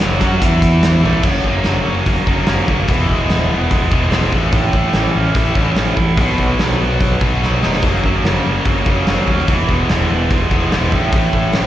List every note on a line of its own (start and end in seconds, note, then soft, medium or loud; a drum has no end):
0.00 0.21 F#1 medium
0.00 0.20 F#2 medium
0.00 0.19 C#3 medium
0.00 0.18 F#3 medium
0.00 snare medium
0.00 closed hi-hat medium
0.19 0.41 F#2 medium
0.19 0.40 F#3 medium
0.19 0.41 C#4 medium
0.19 0.41 F#4 medium
0.19 kick medium
0.19 closed hi-hat medium
0.41 1.00 E2 medium
0.41 1.02 E3 medium
0.41 1.03 B3 medium
0.41 1.03 E4 loud
0.41 kick medium
0.41 closed hi-hat medium
0.62 kick medium
0.62 closed hi-hat medium
0.83 snare loud
0.83 closed hi-hat medium
1.03 1.24 A1 medium
1.03 1.23 A2 medium
1.03 1.24 E3 medium
1.03 1.24 A3 medium
1.03 high tom medium
1.13 floor tom medium
1.23 1.39 F#1 medium
1.23 1.44 F#2 medium
1.23 1.45 C#3 medium
1.23 1.43 F#3 medium
1.23 1.45 A#3 medium
1.23 1.45 C#4 medium
1.23 1.46 F#4 medium
1.23 kick loud
1.23 crash medium
1.44 1.60 F#1 medium
1.44 1.64 F#3 medium
1.44 1.65 A#3 medium
1.44 1.65 C#4 medium
1.44 kick medium
1.64 1.81 F#1 medium
1.64 1.86 F#2 medium
1.64 1.86 C#3 medium
1.64 1.84 F#3 medium
1.64 1.85 A#3 medium
1.64 1.87 C#4 medium
1.64 1.87 F#4 medium
1.64 snare medium
1.64 open hi-hat soft
1.85 2.01 F#1 medium
1.85 2.17 F#3 soft
1.85 2.17 A#3 soft
1.85 2.16 C#4 soft
1.85 2.15 F#4 medium
2.06 2.21 F#1 medium
2.06 2.47 A#3 medium
2.06 kick medium
2.06 open hi-hat medium
2.16 2.25 F#3 soft
2.16 2.27 A#3 soft
2.16 2.27 C#4 soft
2.16 2.27 F#4 soft
2.27 2.43 F#1 medium
2.27 2.45 F#2 medium
2.27 2.46 C#3 medium
2.27 2.47 F#3 medium
2.27 2.47 A#3 medium
2.27 2.49 C#4 medium
2.27 2.48 F#4 medium
2.27 kick medium
2.47 2.63 F#1 medium
2.47 2.58 F#2 medium
2.47 2.58 C#3 medium
2.47 2.59 F#3 medium
2.47 2.58 A#3 medium
2.47 2.57 C#4 medium
2.47 2.57 F#4 medium
2.47 snare loud
2.47 open hi-hat soft
2.58 2.67 F#3 soft
2.58 2.67 A#3 soft
2.58 2.68 C#4 medium
2.58 2.68 F#4 medium
2.68 2.83 F#1 medium
2.68 2.78 F#3 medium
2.68 2.79 A#3 medium
2.68 2.79 C#4 medium
2.68 2.77 F#4 medium
2.68 kick medium
2.79 2.88 F#3 soft
2.79 2.89 A#3 soft
2.79 2.90 C#4 soft
2.79 2.89 F#4 soft
2.88 3.04 E1 medium
2.88 3.09 E3 medium
2.88 3.90 G#3 medium
2.88 3.09 B3 medium
2.88 3.10 E4 medium
2.88 3.10 G#4 medium
2.88 kick loud
2.88 open hi-hat soft
3.09 3.24 E1 medium
3.09 3.28 E3 medium
3.09 3.70 G#3 medium
3.09 3.29 B3 medium
3.09 3.29 E4 medium
3.09 3.30 G#4 medium
3.09 kick medium
3.29 3.46 E1 medium
3.29 3.50 E3 medium
3.29 3.51 B3 medium
3.29 3.51 E4 medium
3.29 3.51 G#4 medium
3.29 snare medium
3.29 open hi-hat soft
3.51 3.66 E1 medium
3.51 3.82 E3 medium
3.51 3.82 B3 medium
3.51 3.81 E4 medium
3.51 3.79 G#4 medium
3.71 3.86 E1 medium
3.71 4.11 G#3 medium
3.71 kick medium
3.71 open hi-hat soft
3.80 3.90 B3 soft
3.80 3.90 E4 soft
3.80 3.91 G#4 soft
3.89 4.07 E1 medium
3.89 4.09 E3 medium
3.89 4.11 G#3 medium
3.89 4.11 B3 medium
3.89 4.12 E4 medium
3.89 4.11 G#4 medium
3.89 kick medium
3.94 4.10 E3 medium
4.10 4.27 E1 medium
4.10 4.22 E3 medium
4.10 4.31 G#3 medium
4.10 4.22 B3 medium
4.10 4.21 E4 medium
4.10 4.20 G#4 medium
4.10 snare medium
4.10 open hi-hat soft
4.21 4.31 B3 soft
4.21 4.31 E4 soft
4.21 4.32 G#4 medium
4.30 4.47 A1 medium
4.30 5.33 A2 medium
4.30 5.34 E3 medium
4.30 4.42 A3 medium
4.30 4.42 C#4 medium
4.30 4.41 E4 medium
4.30 kick medium
4.41 4.53 A3 soft
4.41 4.53 C#4 soft
4.41 4.53 E4 soft
4.41 4.52 A4 medium
4.52 4.68 A1 medium
4.52 4.74 A2 medium
4.52 4.74 E3 medium
4.52 4.72 A3 medium
4.52 4.72 C#4 medium
4.52 4.73 E4 medium
4.52 4.75 A4 medium
4.52 kick loud
4.52 open hi-hat soft
4.73 4.89 A1 medium
4.73 4.94 A3 medium
4.73 4.93 C#4 medium
4.73 4.93 E4 medium
4.73 4.94 A4 medium
4.73 kick medium
4.93 5.10 A1 medium
4.93 5.15 A2 medium
4.93 5.15 E3 medium
4.93 5.12 A3 medium
4.93 5.14 C#4 medium
4.93 5.14 E4 medium
4.93 5.16 A4 medium
4.93 snare medium
4.93 open hi-hat soft
5.13 5.30 A1 medium
5.13 5.45 A3 soft
5.13 5.46 C#4 medium
5.13 5.46 E4 medium
5.13 5.44 A4 medium
5.34 5.50 A1 medium
5.34 5.54 A2 medium
5.34 5.55 E3 medium
5.34 5.55 A3 medium
5.34 5.56 C#4 medium
5.34 5.54 E4 medium
5.34 kick medium
5.34 open hi-hat soft
5.46 5.54 A3 soft
5.46 5.56 C#4 soft
5.46 5.56 E4 soft
5.46 5.56 A4 soft
5.55 5.71 A1 medium
5.55 5.98 A2 medium
5.55 5.97 E3 medium
5.55 5.76 A3 medium
5.55 5.77 C#4 medium
5.55 5.76 E4 medium
5.55 5.77 A4 medium
5.55 kick medium
5.76 5.92 A1 medium
5.76 5.87 A2 medium
5.76 5.87 E3 medium
5.76 5.87 A3 medium
5.76 5.88 C#4 medium
5.76 5.88 E4 medium
5.76 5.86 A4 medium
5.76 snare loud
5.76 open hi-hat soft
5.88 5.95 A3 soft
5.88 5.98 C#4 soft
5.88 5.98 E4 soft
5.88 5.98 A4 medium
5.96 6.18 A1 medium
5.96 6.07 A3 medium
5.96 6.09 C#4 medium
5.96 6.08 E4 medium
5.96 6.08 A4 medium
5.96 kick medium
6.09 6.19 A3 soft
6.09 6.20 C#4 soft
6.09 6.20 E4 soft
6.09 6.19 A4 soft
6.17 6.33 B1 medium
6.17 6.39 B2 medium
6.17 6.39 F#3 medium
6.17 6.40 B3 medium
6.17 kick loud
6.17 open hi-hat medium
6.21 6.40 D#4 medium
6.21 6.40 B4 medium
6.38 6.54 B1 medium
6.38 6.60 F#3 medium
6.38 6.60 B3 medium
6.38 6.61 D#4 medium
6.38 kick medium
6.43 6.62 B4 medium
6.59 6.75 B1 medium
6.59 6.80 B2 medium
6.59 6.80 F#3 medium
6.59 6.81 B3 medium
6.59 6.82 D#4 medium
6.59 6.82 B4 medium
6.59 snare medium
6.59 open hi-hat soft
6.81 6.96 B1 medium
6.81 7.11 F#3 medium
6.81 7.12 B3 medium
6.81 7.12 D#4 medium
6.81 7.11 B4 medium
7.00 7.16 B1 medium
7.00 7.41 F#3 medium
7.00 kick loud
7.00 open hi-hat soft
7.12 7.21 B3 soft
7.12 7.23 D#4 soft
7.12 7.22 B4 medium
7.21 7.36 B1 medium
7.21 7.41 B2 medium
7.21 7.42 F#3 medium
7.21 7.42 B3 medium
7.21 7.43 D#4 medium
7.21 7.44 B4 medium
7.21 kick medium
7.43 7.57 B1 medium
7.43 7.53 B2 medium
7.43 7.53 F#3 medium
7.43 7.53 B3 medium
7.43 7.53 D#4 medium
7.43 7.51 B4 medium
7.43 snare soft
7.52 7.62 B3 soft
7.52 7.63 D#4 soft
7.52 7.62 B4 medium
7.62 7.83 F1 medium
7.62 7.72 F#3 medium
7.62 7.73 B3 medium
7.62 7.74 D#4 medium
7.62 7.72 B4 medium
7.62 snare medium
7.73 7.85 B3 soft
7.73 7.84 D#4 soft
7.73 7.83 B4 soft
7.73 snare medium
7.82 7.98 F#1 medium
7.82 8.04 F#2 medium
7.82 8.04 C#3 medium
7.82 8.02 F#3 medium
7.82 8.04 A#3 medium
7.82 kick loud
7.82 open hi-hat soft
7.87 8.05 C#4 medium
7.87 8.06 A#4 medium
8.03 8.19 F#1 medium
8.03 8.24 F#3 medium
8.03 8.25 A#3 medium
8.03 8.25 C#4 medium
8.03 8.26 A#4 medium
8.03 kick medium
8.24 8.39 F#1 medium
8.24 8.46 F#2 medium
8.24 8.46 C#3 medium
8.24 8.43 F#3 medium
8.24 8.45 A#3 medium
8.24 8.46 C#4 medium
8.24 8.46 A#4 medium
8.24 snare medium
8.24 open hi-hat soft
8.45 8.61 F#1 medium
8.45 8.75 F#3 medium
8.45 8.76 A#3 soft
8.45 8.75 C#4 medium
8.45 8.74 A#4 medium
8.65 8.81 F#1 medium
8.65 9.06 F#3 medium
8.65 kick medium
8.65 open hi-hat soft
8.75 8.84 F#3 soft
8.75 8.85 A#3 soft
8.75 8.86 C#4 soft
8.75 8.86 A#4 medium
8.85 9.01 F#1 medium
8.85 9.04 F#2 medium
8.85 9.05 C#3 medium
8.85 9.06 F#3 medium
8.85 9.06 A#3 medium
8.85 9.07 C#4 medium
8.85 9.06 A#4 medium
8.85 kick medium
9.06 9.22 F#1 medium
9.06 9.16 F#2 medium
9.06 9.17 C#3 medium
9.06 9.17 F#3 medium
9.06 9.17 A#3 medium
9.06 9.17 C#4 medium
9.06 9.15 A#4 medium
9.06 snare medium
9.06 open hi-hat soft
9.17 9.27 A#3 soft
9.17 9.27 C#4 soft
9.17 9.27 A#4 medium
9.21 9.25 F#3 soft
9.27 9.42 D#2 medium
9.27 9.37 F#3 medium
9.27 9.38 A#3 medium
9.27 9.37 C#4 medium
9.27 9.35 A#4 medium
9.27 kick medium
9.37 9.49 F#3 soft
9.37 9.49 A#3 soft
9.37 9.48 C#4 soft
9.37 9.47 A#4 soft
9.48 9.63 E1 medium
9.48 9.67 E3 medium
9.48 10.50 G#3 medium
9.48 9.69 B3 medium
9.48 9.69 E4 medium
9.48 9.70 G#4 medium
9.48 kick loud
9.48 open hi-hat medium
9.69 9.83 E1 medium
9.69 9.87 E3 medium
9.69 10.30 G#3 medium
9.69 9.88 B3 medium
9.69 9.89 E4 medium
9.69 9.90 G#4 medium
9.69 kick medium
9.89 10.04 E1 medium
9.89 10.09 E3 medium
9.89 10.10 B3 medium
9.89 10.10 E4 medium
9.89 10.10 G#4 medium
9.89 snare medium
9.89 open hi-hat soft
10.10 10.25 E1 medium
10.10 10.41 E3 soft
10.10 10.41 B3 medium
10.10 10.41 E4 medium
10.10 10.40 G#4 soft
10.30 10.45 E1 medium
10.30 10.70 G#3 medium
10.30 kick loud
10.30 open hi-hat soft
10.41 10.51 B3 soft
10.41 10.52 E4 medium
10.41 10.51 G#4 soft
10.50 10.66 E1 medium
10.50 10.71 E3 medium
10.50 10.70 G#3 medium
10.50 10.72 B3 medium
10.50 10.70 E4 medium
10.50 kick medium
10.54 10.73 E4 medium
10.54 10.73 G#4 medium
10.72 10.87 E1 medium
10.72 10.82 E3 medium
10.72 10.91 G#3 medium
10.72 10.83 B3 medium
10.72 10.83 E4 medium
10.72 10.81 G#4 medium
10.72 snare medium
10.72 open hi-hat soft
10.82 10.92 B3 soft
10.82 10.92 E4 soft
10.82 10.92 G#4 medium
10.91 11.07 A1 medium
10.91 11.66 A2 medium
10.91 11.66 E3 medium
10.91 11.02 A3 medium
10.91 11.02 C#4 medium
10.91 11.01 E4 medium
10.91 11.00 A4 medium
10.91 kick medium
11.01 11.11 A3 soft
11.01 11.12 C#4 soft
11.01 11.12 E4 soft
11.01 11.12 A4 medium
11.12 11.28 A1 medium
11.12 11.33 A2 medium
11.12 11.33 E3 medium
11.12 11.30 A3 medium
11.12 11.30 C#4 medium
11.12 11.33 E4 medium
11.12 11.32 A4 medium
11.12 kick loud
11.12 open hi-hat medium
11.31 11.48 A1 medium
11.31 11.51 A3 medium
11.31 11.52 C#4 medium
11.31 11.53 E4 medium
11.31 11.53 A4 medium
11.31 kick medium
11.52 11.66 A1 medium
11.52 11.66 A2 medium
11.52 11.66 E3 medium
11.52 11.66 A3 medium
11.52 11.66 C#4 medium
11.52 11.66 E4 medium
11.52 11.66 A4 medium
11.52 snare medium
11.52 open hi-hat soft